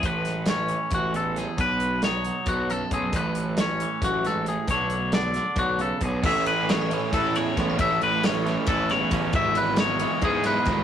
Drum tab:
CC |-------|-------|-------|-------|
RD |-------|-------|-------|-------|
HH |xxxxxxx|xxxxxxx|xxxxxxx|xxxxxxx|
SD |-oo---o|--o----|--o-oo-|--oo---|
BD |o---o--|o---o-o|o---o--|o---o-o|

CC |x------|-------|-------|
RD |-xxxxxx|xxxxxxx|xxxxxxx|
HH |-------|-------|-------|
SD |--o---o|--oo-oo|--o--oo|
BD |o---o-o|o---o-o|o---o-o|